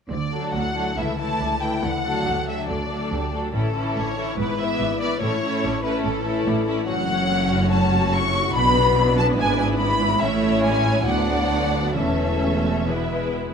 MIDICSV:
0, 0, Header, 1, 7, 480
1, 0, Start_track
1, 0, Key_signature, 2, "major"
1, 0, Tempo, 430416
1, 114, Time_signature, 4, 2, 24, 8
1, 4429, Tempo, 416956
1, 7786, Key_signature, 3, "major"
1, 12109, Tempo, 446761
1, 15219, End_track
2, 0, Start_track
2, 0, Title_t, "Violin section"
2, 0, Program_c, 0, 48
2, 110, Note_on_c, 0, 74, 49
2, 571, Note_off_c, 0, 74, 0
2, 602, Note_on_c, 0, 78, 53
2, 1075, Note_off_c, 0, 78, 0
2, 1087, Note_on_c, 0, 76, 50
2, 1320, Note_on_c, 0, 81, 56
2, 1326, Note_off_c, 0, 76, 0
2, 1793, Note_off_c, 0, 81, 0
2, 1802, Note_on_c, 0, 79, 51
2, 2045, Note_off_c, 0, 79, 0
2, 2046, Note_on_c, 0, 78, 61
2, 2765, Note_off_c, 0, 78, 0
2, 2766, Note_on_c, 0, 76, 50
2, 2999, Note_off_c, 0, 76, 0
2, 3009, Note_on_c, 0, 74, 45
2, 3709, Note_off_c, 0, 74, 0
2, 3952, Note_on_c, 0, 69, 56
2, 4393, Note_off_c, 0, 69, 0
2, 4430, Note_on_c, 0, 73, 55
2, 4909, Note_on_c, 0, 71, 57
2, 4912, Note_off_c, 0, 73, 0
2, 5145, Note_off_c, 0, 71, 0
2, 5152, Note_on_c, 0, 76, 67
2, 5621, Note_on_c, 0, 74, 61
2, 5632, Note_off_c, 0, 76, 0
2, 5862, Note_off_c, 0, 74, 0
2, 5867, Note_on_c, 0, 73, 66
2, 6574, Note_off_c, 0, 73, 0
2, 6575, Note_on_c, 0, 71, 64
2, 6811, Note_on_c, 0, 69, 57
2, 6815, Note_off_c, 0, 71, 0
2, 7526, Note_off_c, 0, 69, 0
2, 7771, Note_on_c, 0, 78, 77
2, 8687, Note_off_c, 0, 78, 0
2, 8729, Note_on_c, 0, 81, 65
2, 9199, Note_off_c, 0, 81, 0
2, 9205, Note_on_c, 0, 85, 78
2, 9689, Note_off_c, 0, 85, 0
2, 9695, Note_on_c, 0, 83, 81
2, 10399, Note_off_c, 0, 83, 0
2, 10417, Note_on_c, 0, 81, 69
2, 10509, Note_off_c, 0, 81, 0
2, 10659, Note_on_c, 0, 80, 77
2, 10883, Note_off_c, 0, 80, 0
2, 10897, Note_on_c, 0, 80, 71
2, 10989, Note_off_c, 0, 80, 0
2, 11132, Note_on_c, 0, 83, 75
2, 11610, Note_off_c, 0, 83, 0
2, 11624, Note_on_c, 0, 76, 69
2, 12107, Note_on_c, 0, 80, 75
2, 12111, Note_off_c, 0, 76, 0
2, 12561, Note_off_c, 0, 80, 0
2, 12572, Note_on_c, 0, 78, 60
2, 13526, Note_off_c, 0, 78, 0
2, 13532, Note_on_c, 0, 76, 52
2, 14967, Note_off_c, 0, 76, 0
2, 15219, End_track
3, 0, Start_track
3, 0, Title_t, "Violin section"
3, 0, Program_c, 1, 48
3, 365, Note_on_c, 1, 62, 32
3, 368, Note_on_c, 1, 69, 31
3, 823, Note_off_c, 1, 62, 0
3, 827, Note_off_c, 1, 69, 0
3, 837, Note_on_c, 1, 62, 32
3, 841, Note_on_c, 1, 69, 28
3, 1070, Note_off_c, 1, 69, 0
3, 1077, Note_off_c, 1, 62, 0
3, 1083, Note_on_c, 1, 69, 30
3, 1086, Note_on_c, 1, 64, 30
3, 1307, Note_off_c, 1, 64, 0
3, 1310, Note_off_c, 1, 69, 0
3, 1320, Note_on_c, 1, 64, 32
3, 1324, Note_on_c, 1, 69, 31
3, 1788, Note_off_c, 1, 64, 0
3, 1792, Note_off_c, 1, 69, 0
3, 1801, Note_on_c, 1, 64, 32
3, 1806, Note_on_c, 1, 69, 31
3, 2040, Note_off_c, 1, 64, 0
3, 2042, Note_off_c, 1, 69, 0
3, 2279, Note_on_c, 1, 62, 35
3, 2281, Note_on_c, 1, 69, 35
3, 2751, Note_off_c, 1, 62, 0
3, 2752, Note_off_c, 1, 69, 0
3, 2764, Note_on_c, 1, 62, 32
3, 2769, Note_on_c, 1, 69, 30
3, 3219, Note_off_c, 1, 62, 0
3, 3227, Note_off_c, 1, 69, 0
3, 3232, Note_on_c, 1, 62, 34
3, 3240, Note_on_c, 1, 69, 33
3, 3698, Note_off_c, 1, 62, 0
3, 3702, Note_off_c, 1, 69, 0
3, 3711, Note_on_c, 1, 62, 33
3, 3715, Note_on_c, 1, 69, 34
3, 3941, Note_off_c, 1, 69, 0
3, 3948, Note_off_c, 1, 62, 0
3, 3949, Note_on_c, 1, 64, 32
3, 3955, Note_on_c, 1, 69, 31
3, 4167, Note_off_c, 1, 64, 0
3, 4169, Note_off_c, 1, 69, 0
3, 4181, Note_on_c, 1, 64, 34
3, 4182, Note_on_c, 1, 69, 33
3, 4655, Note_off_c, 1, 64, 0
3, 4656, Note_off_c, 1, 69, 0
3, 4668, Note_on_c, 1, 64, 36
3, 4668, Note_on_c, 1, 69, 34
3, 4890, Note_off_c, 1, 64, 0
3, 4897, Note_on_c, 1, 71, 33
3, 4904, Note_on_c, 1, 64, 32
3, 4905, Note_off_c, 1, 69, 0
3, 5133, Note_off_c, 1, 64, 0
3, 5138, Note_off_c, 1, 71, 0
3, 5146, Note_on_c, 1, 64, 35
3, 5150, Note_on_c, 1, 71, 39
3, 5616, Note_off_c, 1, 64, 0
3, 5621, Note_off_c, 1, 71, 0
3, 5630, Note_on_c, 1, 64, 33
3, 5633, Note_on_c, 1, 71, 36
3, 5864, Note_off_c, 1, 64, 0
3, 5868, Note_off_c, 1, 71, 0
3, 5877, Note_on_c, 1, 69, 35
3, 5878, Note_on_c, 1, 64, 32
3, 6097, Note_off_c, 1, 64, 0
3, 6100, Note_off_c, 1, 69, 0
3, 6110, Note_on_c, 1, 64, 37
3, 6114, Note_on_c, 1, 69, 37
3, 6568, Note_off_c, 1, 64, 0
3, 6568, Note_off_c, 1, 69, 0
3, 6581, Note_on_c, 1, 69, 37
3, 6582, Note_on_c, 1, 64, 40
3, 7040, Note_off_c, 1, 64, 0
3, 7045, Note_off_c, 1, 69, 0
3, 7054, Note_on_c, 1, 64, 40
3, 7059, Note_on_c, 1, 69, 44
3, 7524, Note_off_c, 1, 64, 0
3, 7524, Note_off_c, 1, 69, 0
3, 7537, Note_on_c, 1, 69, 40
3, 7538, Note_on_c, 1, 64, 44
3, 7776, Note_off_c, 1, 64, 0
3, 7776, Note_off_c, 1, 69, 0
3, 7792, Note_on_c, 1, 66, 44
3, 7794, Note_on_c, 1, 73, 44
3, 9651, Note_off_c, 1, 73, 0
3, 9686, Note_on_c, 1, 71, 50
3, 10610, Note_off_c, 1, 66, 0
3, 10647, Note_on_c, 1, 64, 51
3, 11572, Note_off_c, 1, 71, 0
3, 11573, Note_off_c, 1, 64, 0
3, 11616, Note_on_c, 1, 73, 49
3, 11618, Note_on_c, 1, 64, 45
3, 12525, Note_off_c, 1, 73, 0
3, 12526, Note_off_c, 1, 64, 0
3, 12570, Note_on_c, 1, 62, 48
3, 12573, Note_on_c, 1, 74, 46
3, 13526, Note_off_c, 1, 62, 0
3, 13527, Note_off_c, 1, 74, 0
3, 13533, Note_on_c, 1, 61, 43
3, 13536, Note_on_c, 1, 69, 42
3, 14495, Note_off_c, 1, 69, 0
3, 14505, Note_on_c, 1, 71, 39
3, 14514, Note_off_c, 1, 61, 0
3, 14515, Note_on_c, 1, 64, 40
3, 15219, Note_off_c, 1, 64, 0
3, 15219, Note_off_c, 1, 71, 0
3, 15219, End_track
4, 0, Start_track
4, 0, Title_t, "Harp"
4, 0, Program_c, 2, 46
4, 116, Note_on_c, 2, 50, 35
4, 364, Note_on_c, 2, 66, 29
4, 613, Note_on_c, 2, 64, 27
4, 841, Note_off_c, 2, 66, 0
4, 855, Note_on_c, 2, 66, 26
4, 1019, Note_off_c, 2, 64, 0
4, 1092, Note_on_c, 2, 49, 34
4, 1108, Note_off_c, 2, 50, 0
4, 1110, Note_off_c, 2, 66, 0
4, 1331, Note_on_c, 2, 64, 29
4, 1567, Note_on_c, 2, 62, 30
4, 1791, Note_off_c, 2, 64, 0
4, 1804, Note_on_c, 2, 64, 31
4, 1975, Note_off_c, 2, 62, 0
4, 2039, Note_on_c, 2, 50, 34
4, 2066, Note_off_c, 2, 64, 0
4, 2069, Note_off_c, 2, 49, 0
4, 2288, Note_on_c, 2, 69, 29
4, 2522, Note_on_c, 2, 67, 28
4, 2752, Note_off_c, 2, 69, 0
4, 2766, Note_on_c, 2, 69, 27
4, 2929, Note_off_c, 2, 67, 0
4, 3007, Note_on_c, 2, 57, 29
4, 3229, Note_off_c, 2, 69, 0
4, 3242, Note_on_c, 2, 69, 32
4, 3485, Note_on_c, 2, 67, 29
4, 3711, Note_off_c, 2, 69, 0
4, 3725, Note_on_c, 2, 69, 33
4, 3888, Note_off_c, 2, 67, 0
4, 3955, Note_on_c, 2, 45, 40
4, 3972, Note_off_c, 2, 50, 0
4, 4188, Note_on_c, 2, 64, 30
4, 4428, Note_on_c, 2, 62, 31
4, 4655, Note_off_c, 2, 64, 0
4, 4669, Note_on_c, 2, 64, 30
4, 4839, Note_off_c, 2, 62, 0
4, 4909, Note_on_c, 2, 44, 39
4, 4929, Note_off_c, 2, 45, 0
4, 4932, Note_off_c, 2, 57, 0
4, 4933, Note_off_c, 2, 69, 0
4, 5130, Note_off_c, 2, 64, 0
4, 5144, Note_on_c, 2, 64, 35
4, 5385, Note_on_c, 2, 62, 30
4, 5611, Note_off_c, 2, 64, 0
4, 5625, Note_on_c, 2, 64, 36
4, 5797, Note_off_c, 2, 62, 0
4, 5866, Note_on_c, 2, 45, 43
4, 5890, Note_off_c, 2, 44, 0
4, 6098, Note_off_c, 2, 64, 0
4, 6112, Note_on_c, 2, 64, 35
4, 6353, Note_on_c, 2, 62, 32
4, 6570, Note_off_c, 2, 64, 0
4, 6583, Note_on_c, 2, 64, 32
4, 6757, Note_off_c, 2, 62, 0
4, 6824, Note_on_c, 2, 52, 34
4, 7051, Note_off_c, 2, 64, 0
4, 7065, Note_on_c, 2, 64, 41
4, 7303, Note_on_c, 2, 62, 37
4, 7533, Note_off_c, 2, 64, 0
4, 7546, Note_on_c, 2, 64, 40
4, 7712, Note_off_c, 2, 62, 0
4, 7781, Note_on_c, 2, 42, 50
4, 7803, Note_off_c, 2, 45, 0
4, 7803, Note_off_c, 2, 52, 0
4, 7804, Note_off_c, 2, 64, 0
4, 8019, Note_on_c, 2, 66, 38
4, 8258, Note_on_c, 2, 64, 34
4, 8482, Note_off_c, 2, 66, 0
4, 8496, Note_on_c, 2, 66, 39
4, 8667, Note_off_c, 2, 64, 0
4, 8736, Note_on_c, 2, 49, 39
4, 8957, Note_off_c, 2, 66, 0
4, 8971, Note_on_c, 2, 66, 40
4, 9205, Note_on_c, 2, 64, 37
4, 9424, Note_off_c, 2, 66, 0
4, 9438, Note_on_c, 2, 66, 42
4, 9617, Note_off_c, 2, 64, 0
4, 9687, Note_on_c, 2, 47, 53
4, 9710, Note_off_c, 2, 42, 0
4, 9710, Note_off_c, 2, 49, 0
4, 9917, Note_off_c, 2, 66, 0
4, 9931, Note_on_c, 2, 66, 43
4, 10169, Note_on_c, 2, 64, 36
4, 10396, Note_off_c, 2, 66, 0
4, 10410, Note_on_c, 2, 66, 36
4, 10578, Note_off_c, 2, 64, 0
4, 10651, Note_on_c, 2, 44, 49
4, 10669, Note_off_c, 2, 47, 0
4, 10670, Note_off_c, 2, 66, 0
4, 10895, Note_on_c, 2, 64, 45
4, 11136, Note_on_c, 2, 62, 37
4, 11364, Note_off_c, 2, 64, 0
4, 11378, Note_on_c, 2, 64, 43
4, 11549, Note_off_c, 2, 62, 0
4, 11619, Note_on_c, 2, 45, 50
4, 11641, Note_off_c, 2, 44, 0
4, 11850, Note_off_c, 2, 64, 0
4, 11863, Note_on_c, 2, 64, 42
4, 12106, Note_on_c, 2, 62, 36
4, 12327, Note_off_c, 2, 64, 0
4, 12340, Note_on_c, 2, 64, 33
4, 12499, Note_off_c, 2, 62, 0
4, 12567, Note_on_c, 2, 50, 44
4, 12588, Note_off_c, 2, 45, 0
4, 12590, Note_off_c, 2, 64, 0
4, 12806, Note_on_c, 2, 74, 35
4, 13039, Note_on_c, 2, 73, 31
4, 13268, Note_off_c, 2, 74, 0
4, 13280, Note_on_c, 2, 74, 32
4, 13451, Note_off_c, 2, 73, 0
4, 13516, Note_on_c, 2, 52, 41
4, 13544, Note_off_c, 2, 50, 0
4, 13544, Note_off_c, 2, 74, 0
4, 13761, Note_on_c, 2, 69, 30
4, 14014, Note_on_c, 2, 68, 30
4, 14245, Note_off_c, 2, 69, 0
4, 14258, Note_on_c, 2, 69, 29
4, 14435, Note_off_c, 2, 68, 0
4, 14492, Note_off_c, 2, 52, 0
4, 14505, Note_on_c, 2, 52, 38
4, 14528, Note_off_c, 2, 69, 0
4, 14753, Note_on_c, 2, 68, 30
4, 14992, Note_on_c, 2, 66, 26
4, 15219, Note_off_c, 2, 52, 0
4, 15219, Note_off_c, 2, 66, 0
4, 15219, Note_off_c, 2, 68, 0
4, 15219, End_track
5, 0, Start_track
5, 0, Title_t, "Viola section"
5, 0, Program_c, 3, 48
5, 356, Note_on_c, 3, 54, 33
5, 359, Note_on_c, 3, 57, 33
5, 828, Note_off_c, 3, 57, 0
5, 829, Note_off_c, 3, 54, 0
5, 841, Note_on_c, 3, 57, 31
5, 843, Note_on_c, 3, 54, 30
5, 1074, Note_off_c, 3, 57, 0
5, 1080, Note_off_c, 3, 54, 0
5, 1085, Note_on_c, 3, 52, 34
5, 1087, Note_on_c, 3, 57, 33
5, 1311, Note_off_c, 3, 52, 0
5, 1315, Note_off_c, 3, 57, 0
5, 1325, Note_on_c, 3, 52, 29
5, 1328, Note_on_c, 3, 57, 31
5, 1787, Note_off_c, 3, 52, 0
5, 1788, Note_off_c, 3, 57, 0
5, 1800, Note_on_c, 3, 52, 32
5, 1801, Note_on_c, 3, 57, 30
5, 2039, Note_off_c, 3, 52, 0
5, 2040, Note_off_c, 3, 57, 0
5, 2288, Note_on_c, 3, 57, 36
5, 2289, Note_on_c, 3, 54, 34
5, 2756, Note_off_c, 3, 54, 0
5, 2756, Note_off_c, 3, 57, 0
5, 2770, Note_on_c, 3, 57, 31
5, 2773, Note_on_c, 3, 54, 33
5, 3236, Note_off_c, 3, 57, 0
5, 3237, Note_off_c, 3, 54, 0
5, 3252, Note_on_c, 3, 54, 31
5, 3253, Note_on_c, 3, 57, 33
5, 3711, Note_off_c, 3, 57, 0
5, 3716, Note_off_c, 3, 54, 0
5, 3724, Note_on_c, 3, 57, 31
5, 3728, Note_on_c, 3, 54, 30
5, 3954, Note_off_c, 3, 57, 0
5, 3956, Note_off_c, 3, 54, 0
5, 3956, Note_on_c, 3, 52, 35
5, 3956, Note_on_c, 3, 61, 33
5, 4180, Note_off_c, 3, 61, 0
5, 4181, Note_off_c, 3, 52, 0
5, 4193, Note_on_c, 3, 61, 37
5, 4194, Note_on_c, 3, 52, 35
5, 4657, Note_off_c, 3, 52, 0
5, 4659, Note_off_c, 3, 61, 0
5, 4671, Note_on_c, 3, 52, 34
5, 4673, Note_on_c, 3, 61, 33
5, 4896, Note_off_c, 3, 52, 0
5, 4907, Note_off_c, 3, 61, 0
5, 4909, Note_on_c, 3, 59, 33
5, 4910, Note_on_c, 3, 52, 35
5, 5134, Note_off_c, 3, 52, 0
5, 5135, Note_off_c, 3, 59, 0
5, 5148, Note_on_c, 3, 52, 31
5, 5149, Note_on_c, 3, 59, 36
5, 5615, Note_off_c, 3, 59, 0
5, 5617, Note_off_c, 3, 52, 0
5, 5629, Note_on_c, 3, 59, 34
5, 5631, Note_on_c, 3, 52, 37
5, 5866, Note_off_c, 3, 59, 0
5, 5866, Note_on_c, 3, 57, 39
5, 5867, Note_off_c, 3, 52, 0
5, 5867, Note_on_c, 3, 61, 38
5, 6091, Note_off_c, 3, 57, 0
5, 6095, Note_off_c, 3, 61, 0
5, 6105, Note_on_c, 3, 57, 38
5, 6109, Note_on_c, 3, 61, 41
5, 6574, Note_off_c, 3, 57, 0
5, 6575, Note_off_c, 3, 61, 0
5, 6588, Note_on_c, 3, 57, 39
5, 6589, Note_on_c, 3, 61, 38
5, 7048, Note_off_c, 3, 57, 0
5, 7049, Note_off_c, 3, 61, 0
5, 7062, Note_on_c, 3, 57, 40
5, 7062, Note_on_c, 3, 61, 36
5, 7528, Note_off_c, 3, 61, 0
5, 7530, Note_off_c, 3, 57, 0
5, 7542, Note_on_c, 3, 61, 37
5, 7544, Note_on_c, 3, 57, 38
5, 7762, Note_off_c, 3, 61, 0
5, 7767, Note_off_c, 3, 57, 0
5, 7776, Note_on_c, 3, 61, 48
5, 7781, Note_on_c, 3, 57, 50
5, 9642, Note_off_c, 3, 61, 0
5, 9645, Note_off_c, 3, 57, 0
5, 9688, Note_on_c, 3, 59, 53
5, 9689, Note_on_c, 3, 62, 56
5, 11573, Note_off_c, 3, 59, 0
5, 11573, Note_off_c, 3, 62, 0
5, 11618, Note_on_c, 3, 57, 50
5, 11619, Note_on_c, 3, 61, 50
5, 12074, Note_off_c, 3, 57, 0
5, 12102, Note_on_c, 3, 56, 44
5, 12527, Note_off_c, 3, 61, 0
5, 12564, Note_on_c, 3, 54, 45
5, 12567, Note_off_c, 3, 56, 0
5, 12567, Note_on_c, 3, 59, 46
5, 13523, Note_off_c, 3, 54, 0
5, 13524, Note_off_c, 3, 59, 0
5, 13527, Note_on_c, 3, 57, 44
5, 13527, Note_on_c, 3, 61, 45
5, 14491, Note_off_c, 3, 61, 0
5, 14507, Note_on_c, 3, 59, 36
5, 14508, Note_on_c, 3, 56, 40
5, 14511, Note_off_c, 3, 57, 0
5, 15219, Note_off_c, 3, 56, 0
5, 15219, Note_off_c, 3, 59, 0
5, 15219, End_track
6, 0, Start_track
6, 0, Title_t, "Cello section"
6, 0, Program_c, 4, 48
6, 106, Note_on_c, 4, 38, 49
6, 523, Note_off_c, 4, 38, 0
6, 605, Note_on_c, 4, 38, 44
6, 1008, Note_off_c, 4, 38, 0
6, 1079, Note_on_c, 4, 37, 41
6, 1483, Note_off_c, 4, 37, 0
6, 1559, Note_on_c, 4, 37, 41
6, 1965, Note_off_c, 4, 37, 0
6, 2043, Note_on_c, 4, 38, 47
6, 2449, Note_off_c, 4, 38, 0
6, 2523, Note_on_c, 4, 38, 40
6, 2923, Note_off_c, 4, 38, 0
6, 2995, Note_on_c, 4, 38, 48
6, 3400, Note_off_c, 4, 38, 0
6, 3476, Note_on_c, 4, 38, 43
6, 3877, Note_off_c, 4, 38, 0
6, 3945, Note_on_c, 4, 45, 51
6, 4345, Note_off_c, 4, 45, 0
6, 4416, Note_on_c, 4, 45, 47
6, 4826, Note_off_c, 4, 45, 0
6, 4899, Note_on_c, 4, 44, 51
6, 5305, Note_off_c, 4, 44, 0
6, 5381, Note_on_c, 4, 44, 46
6, 5788, Note_off_c, 4, 44, 0
6, 5865, Note_on_c, 4, 45, 60
6, 6270, Note_off_c, 4, 45, 0
6, 6346, Note_on_c, 4, 45, 55
6, 6747, Note_off_c, 4, 45, 0
6, 6812, Note_on_c, 4, 45, 55
6, 7221, Note_off_c, 4, 45, 0
6, 7297, Note_on_c, 4, 45, 55
6, 7703, Note_off_c, 4, 45, 0
6, 7782, Note_on_c, 4, 42, 54
6, 9645, Note_off_c, 4, 42, 0
6, 9688, Note_on_c, 4, 47, 57
6, 10631, Note_off_c, 4, 47, 0
6, 10649, Note_on_c, 4, 44, 52
6, 11620, Note_off_c, 4, 44, 0
6, 11621, Note_on_c, 4, 45, 58
6, 12528, Note_off_c, 4, 45, 0
6, 12572, Note_on_c, 4, 38, 49
6, 13521, Note_on_c, 4, 40, 43
6, 13526, Note_off_c, 4, 38, 0
6, 15219, Note_off_c, 4, 40, 0
6, 15219, End_track
7, 0, Start_track
7, 0, Title_t, "Double bass section"
7, 0, Program_c, 5, 48
7, 108, Note_on_c, 5, 38, 47
7, 524, Note_off_c, 5, 38, 0
7, 607, Note_on_c, 5, 38, 42
7, 1009, Note_off_c, 5, 38, 0
7, 1089, Note_on_c, 5, 37, 46
7, 1488, Note_off_c, 5, 37, 0
7, 1566, Note_on_c, 5, 37, 46
7, 1969, Note_off_c, 5, 37, 0
7, 2045, Note_on_c, 5, 38, 46
7, 2450, Note_off_c, 5, 38, 0
7, 2529, Note_on_c, 5, 38, 48
7, 2926, Note_off_c, 5, 38, 0
7, 2998, Note_on_c, 5, 38, 43
7, 3401, Note_off_c, 5, 38, 0
7, 3479, Note_on_c, 5, 38, 43
7, 3878, Note_off_c, 5, 38, 0
7, 3953, Note_on_c, 5, 33, 49
7, 4350, Note_off_c, 5, 33, 0
7, 4426, Note_on_c, 5, 33, 44
7, 4832, Note_off_c, 5, 33, 0
7, 4908, Note_on_c, 5, 32, 54
7, 5310, Note_off_c, 5, 32, 0
7, 5384, Note_on_c, 5, 32, 49
7, 5790, Note_off_c, 5, 32, 0
7, 5862, Note_on_c, 5, 33, 52
7, 6269, Note_off_c, 5, 33, 0
7, 6342, Note_on_c, 5, 33, 50
7, 6745, Note_off_c, 5, 33, 0
7, 6816, Note_on_c, 5, 33, 56
7, 7224, Note_off_c, 5, 33, 0
7, 7298, Note_on_c, 5, 33, 60
7, 7703, Note_off_c, 5, 33, 0
7, 7781, Note_on_c, 5, 30, 49
7, 9645, Note_off_c, 5, 30, 0
7, 9693, Note_on_c, 5, 35, 57
7, 10633, Note_off_c, 5, 35, 0
7, 10658, Note_on_c, 5, 32, 53
7, 11625, Note_off_c, 5, 32, 0
7, 11636, Note_on_c, 5, 33, 54
7, 12535, Note_off_c, 5, 33, 0
7, 12571, Note_on_c, 5, 38, 49
7, 13526, Note_off_c, 5, 38, 0
7, 13528, Note_on_c, 5, 28, 45
7, 15219, Note_off_c, 5, 28, 0
7, 15219, End_track
0, 0, End_of_file